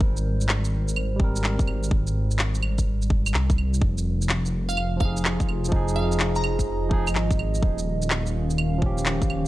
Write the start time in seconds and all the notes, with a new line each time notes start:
Already playing: G3 A#4 C5
0.00 G#1, kick
0.17 shaker
0.41 shaker
0.49 clap
0.65 shaker
0.88 shaker
0.96 claves
1.16 G3 C4, kick
1.24 A#4
1.36 shaker
1.44 clap
1.59 kick, shaker
1.68 G#1, claves
1.83 shaker
1.91 kick
2.07 shaker
2.31 shaker
2.39 clap
2.55 shaker
2.63 claves
2.78 kick, shaker
3.02 shaker
3.10 kick
3.26 claves, shaker
3.34 C2, clap
3.50 kick, shaker
3.58 claves
3.74 shaker
3.82 F1 F3, kick
3.98 shaker
4.22 shaker
4.27 F4, clap
4.46 shaker
4.69 F5, shaker
4.77 claves
4.97 F3 F5, kick
5.01 D#4 G#4
5.06 G#4
5.17 shaker
5.25 clap
5.40 kick, shaker
5.45 F1 D#5, claves
5.65 F3, shaker
5.72 D#4, kick
5.76 G#4
5.88 shaker
5.96 F5
6.12 shaker
6.20 clap
6.36 A#5, shaker
6.44 claves
6.59 kick, shaker
6.89 F3 D#4 G#4, kick
7.07 claves, shaker
7.15 G#1, clap
7.31 kick, shaker
7.39 claves
7.55 shaker
7.63 D#1 D#3, kick
7.79 shaker
7.83 G3 C#4
8.02 shaker
8.07 F5, clap
8.26 shaker
8.50 shaker
8.58 claves
8.78 F3, kick
8.82 C#4 G4
8.98 shaker
9.06 clap
9.22 kick, shaker
9.30 D#1, claves